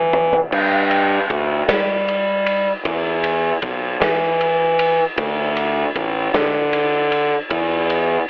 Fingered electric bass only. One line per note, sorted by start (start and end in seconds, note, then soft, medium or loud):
0.00 0.34 E3 medium
0.53 1.17 G2 loud
1.30 1.62 D2 loud
1.68 2.66 G3 loud
2.85 3.50 E2 loud
3.62 3.95 B1 loud
4.00 4.98 E3 medium
5.18 5.83 D2 loud
5.95 6.28 A1 loud
6.34 7.32 D3 medium
7.51 8.16 E2 loud